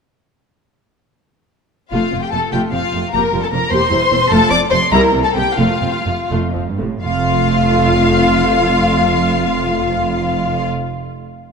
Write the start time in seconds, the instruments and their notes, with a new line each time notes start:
1.92 double bass section F1, cello section F2, viola section A3 F4, violin section F4 F5
2.12 double bass section F1, cello section F2, viola section F3 C4
2.22 violin section G4 G5
2.31 double bass section F1, cello section F2, viola section C3 A3, violin section A4 A5
2.52 double bass section F1, cello section F2, viola section A3 F4, violin section G4 G5
2.72 double bass section F1, cello section F2, viola section F3 C4, violin section F4 F5
2.93 double bass section F1, cello section F2, viola section C3 A3
3.13 double bass section F1, cello section F2, viola section A#3 G4, violin section A#4 A#5
3.33 double bass section F1, cello section F2, viola section G3 F4
3.43 violin section A4 A5
3.52 double bass section F1, cello section F2, viola section F3 D4, violin section A#4 A#5
3.71 double bass section E1, cello section E2, viola section A#3 G4, violin section C5 C6
3.91 double bass section E1, cello section E2, viola section G3 E4
4.11 double bass section E1, cello section E2, viola section E3 C4
4.29 double bass section F1, cello section F2, viola section A3 F4, violin section A4 A5
4.50 double bass section F1, cello section F2, viola section F3 C4, violin section D5 D6
4.70 double bass section F1, cello section F2, viola section C3 A3, violin section C5 C6
4.91 cello section C2, double bass section C2, viola section G3 E4, violin section A#4 A#5
5.13 cello section C2, double bass section C2, viola section E3 C4
5.23 violin section A4 A5
5.35 cello section C2, double bass section C2, viola section C3 A#3, violin section G4 G5
5.58 double bass section F1, cello section F2, viola section A3 F4, violin section F4 F5
5.82 double bass section F1, cello section F2, viola section F3 C4
6.05 double bass section F1, cello section F2, viola section C3 A3
6.30 double bass section F1, cello section F2, viola section A3 F4
6.53 double bass section F1, viola section F3 C4
6.67 cello section G2
6.78 double bass section F1, cello section A2, viola section C3 A3
7.03 double bass section F1, cello section F2, viola section A3 F4, violin section F4 F5